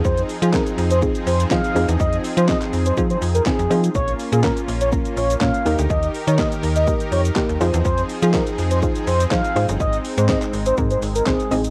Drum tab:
HH |-xox-xox-xox-xox|-xox-xox-xox-xox|-xox-xox-xox-xox|-xox-xox-xox-xox|
SH |xxxxxxxxxxxxxxxx|xxxxxxxxxxxxxxxx|xxxxxxxxxxxxxxxx|xxxxxxxxxxxxxxxx|
CP |----x-------x---|----xx------x---|----x-------x---|----x-------x---|
SD |----o-------o---|----o-------o---|----o-------o---|----o-------o---|
BD |o---o---o---o---|o---o---o---o---|o---o---o---o---|o---o---o---o---|

HH |-xox-xox-xox-xox|-xox-xox-xox-xox|
SH |xxxxxxxxxxxxxxxx|xxxxxxxxxxxxxxxx|
CP |----x-------x---|----xx------x---|
SD |----o-------o---|----o-------o---|
BD |o---o---o---o---|o---o---o---o---|